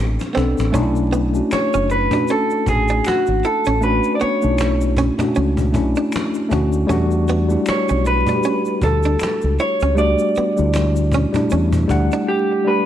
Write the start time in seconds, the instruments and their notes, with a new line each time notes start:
Already playing: tine electric piano B3 C4 D4 A4
0.00 fingered electric bass A1
0.19 cajon slap, shaker
0.33 fingered electric bass B1, tine electric piano B3 C4 D4 A4, hollow-body jazz guitar C4
0.37 cajon slap
0.58 fingered electric bass A1, cajon slap, shaker
0.72 fingered electric bass B1, tine electric piano A3 C#4 D4 D#4, hollow-body jazz guitar C#4, cajon bass, shaker
0.82 tine electric piano E4
0.96 shaker
1.12 hollow-body jazz guitar B3, shaker
1.33 tine electric piano A3 C#4 D4 F#4, shaker
1.51 clean electric guitar C#5, finger snap, muted fingered electric bass stroke, cajon slap, shaker
1.74 fingered electric bass F#1, hollow-body jazz guitar C#4, shaker
1.90 clean electric guitar B4, muted hollow-body jazz guitar stroke, shaker
2.10 tine electric piano A3 C#4 D4 F#4, hollow-body jazz guitar D4, cajon bass, shaker
2.26 hollow-body jazz guitar C#4, cajon slap, shaker
2.31 clean electric guitar A4
2.50 shaker
2.66 fingered electric bass A1, clean electric guitar G#4, muted hollow-body jazz guitar stroke, cajon bass, shaker
2.88 hollow-body jazz guitar D4, shaker
3.05 clean electric guitar F#4, finger snap, muted hollow-body jazz guitar stroke, cajon slap, shaker
3.27 fingered electric bass G#1, shaker
3.44 hollow-body jazz guitar E4, clean electric guitar A4, shaker
3.65 fingered electric bass A1, hollow-body jazz guitar C#4, shaker
3.81 tine electric piano A3 C#4 D4 F#4, clean electric guitar B4, cajon slap, shaker
4.03 shaker
4.15 clean electric guitar D5
4.20 hollow-body jazz guitar B3, clean electric guitar C#5, muted fingered electric bass stroke, cajon slap, shaker
4.42 fingered electric bass B1, tine electric piano A3 C#4 D4 D#4, shaker
4.51 tine electric piano E4
4.58 finger snap, muted hollow-body jazz guitar stroke, cajon slap, shaker
4.81 shaker
4.97 hollow-body jazz guitar C#4, cajon bass, shaker
5.18 tine electric piano A3 C#4 D4 F#4, hollow-body jazz guitar D4, cajon bass, shaker
5.34 fingered electric bass C#2, hollow-body jazz guitar C#4, cajon slap, shaker
5.57 cajon bass, shaker
5.72 fingered electric bass B1, tine electric piano A3 C#4 D4 E4, muted hollow-body jazz guitar stroke, cajon bass, shaker
5.95 hollow-body jazz guitar D4, shaker
6.12 finger snap, cajon slap, shaker
6.34 shaker
6.49 fingered electric bass D2, tine electric piano A3 C#4 D4 F#4, hollow-body jazz guitar D4, cajon bass, shaker
6.73 shaker
6.87 fingered electric bass E2, tine electric piano G3 A3 D4 F#4, hollow-body jazz guitar C#4, cajon bass, shaker
7.11 shaker
7.28 hollow-body jazz guitar B3, shaker
7.48 tine electric piano G3 A3 D4 E4, shaker
7.66 clean electric guitar C#5, finger snap, muted fingered electric bass stroke, cajon slap, shaker
7.88 fingered electric bass B1, hollow-body jazz guitar C#4, shaker
8.05 clean electric guitar B4, muted hollow-body jazz guitar stroke, shaker
8.25 tine electric piano G3 A3 D4 F#4, hollow-body jazz guitar D4, cajon bass, shaker
8.35 tine electric piano G4
8.42 hollow-body jazz guitar C#4, cajon slap, shaker
8.65 shaker
8.82 fingered electric bass D2, clean electric guitar A4, muted hollow-body jazz guitar stroke, cajon bass, shaker
9.03 hollow-body jazz guitar D4, shaker
9.19 finger snap, muted hollow-body jazz guitar stroke, cajon slap, shaker
9.41 fingered electric bass C#2, shaker
9.59 hollow-body jazz guitar E4, clean electric guitar C#5, cajon slap, shaker
9.80 fingered electric bass C#2, hollow-body jazz guitar C#4, shaker
9.95 tine electric piano G3 A3 D4 F#4, clean electric guitar D5, cajon slap, shaker
10.19 shaker
10.35 hollow-body jazz guitar B3, muted fingered electric bass stroke, cajon slap, shaker
10.56 fingered electric bass D2, tine electric piano G3 A3 D4 E4, shaker
10.74 finger snap, muted hollow-body jazz guitar stroke, cajon slap, shaker
10.96 shaker
11.12 hollow-body jazz guitar C#4, cajon bass, shaker
11.33 tine electric piano G3 A3 D4 E4, hollow-body jazz guitar D4, cajon bass, shaker
11.49 fingered electric bass E2, hollow-body jazz guitar C#4, cajon slap, shaker
11.72 cajon bass, shaker
11.87 fingered electric bass D2, tine electric piano G3 A3 D4 F#5, muted hollow-body jazz guitar stroke, cajon bass, shaker
12.11 hollow-body jazz guitar D4, shaker
12.28 clean electric guitar G4
12.65 tine electric piano G3 A3 D4 G4, clean electric guitar B4